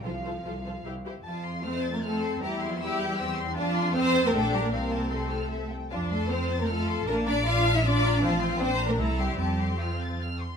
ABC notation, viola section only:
X:1
M:3/4
L:1/8
Q:1/4=154
K:F
V:1 name="Viola section"
F F F F [EG] [EG] | z2 A,2 C2 | E2 E2 C2 | D2 C2 D2 |
C4- C z | D2 C2 F2 | D2 D2 F2 | C2 D2 E2 |
C4- C z |]